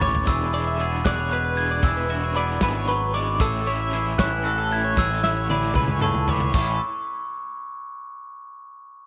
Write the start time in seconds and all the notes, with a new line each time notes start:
Already playing: A1 E3
0.00 A3 C#4 E4 C#5 D6, floor tom
0.15 floor tom
0.25 E1 E3 B3 D4 G#4 B4 E6, kick, closed hi-hat
0.53 E3 B3 D4 G#4 D5, closed hi-hat
0.67 E5
0.78 E3 B3 D4 G#4, closed hi-hat
1.04 E1 E3 B3 D4 G#4 D5 F#6, kick, snare, closed hi-hat
1.20 C#5
1.31 B2 G#4 B4 F#6, closed hi-hat
1.45 B4
1.56 E3 B3 D4 G#4 G#6, closed hi-hat
1.71 D5
1.83 E1 E3 B3 D4 G#4 E6, kick, closed hi-hat
1.97 B4
2.08 E3 B3 D4 F#4 G#4 E5, closed hi-hat
2.23 G#4 C#5
2.35 E3 B3 D4 G#4 D5 B5, closed hi-hat
2.61 G#1 E3 B3 D4 G#4 B4, kick, snare, closed hi-hat
2.75 C#5
2.88 F#3 B4 C#6, closed hi-hat
3.13 E3 G#3 B3 D4 G#4 D5 D6, closed hi-hat
3.40 A1 A2 E3 A3 C#4 E4 G#4 A4 E6, kick, closed hi-hat
3.66 E3 A3 C#4 E4 C#5, closed hi-hat
3.80 E5
3.93 E3 A3 C#4 E4 G#4, closed hi-hat
4.18 A1 E3 A3 C#4 E4 C#5 F#6, kick, snare, closed hi-hat
4.33 B4
4.43 A2 F#4 A4 F#6, closed hi-hat
4.58 G#4 A4
4.71 E3 A3 C#4 E4 G#6, closed hi-hat
4.85 C#5
4.97 A1 A2 E3 A3 C#4 E4 G#4 E6, kick, snare
5.11 A4
5.23 E3 A3 C#4 E4 E5, snare
5.37 C#5
5.49 E3 A3 C#4 E4 G#4 D5 B5, high tom
5.75 C#2 E3 A3 C#4 E4 B4, kick, mid tom
5.88 C#5, mid tom
6.01 A2 G#4 A4 C#6, mid tom
6.14 floor tom
6.27 E3 A3 C#4 E4 C#5 D6, floor tom
6.40 floor tom
6.53 A1 A2 E3 A3 C#4 E4 A4 C#6, kick, crash
6.59 G#4